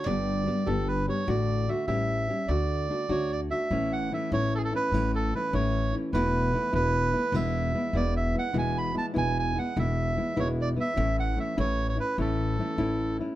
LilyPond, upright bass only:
\new Staff \with { instrumentName = "Upright bass" } { \clef bass \time 6/8 \key d \major \tempo 4. = 99 g,,4. g,,4. | a,,4. a,,4. | d,4. d,4. | \key a \major a,,4. a,,4. |
a,,4. a,,4. | e,,4. e,,4. | e,,4. e,,4. | e,,4. e,,4. |
e,,4. e,,4. | a,,4. a,,4. | a,,4. a,,4. | }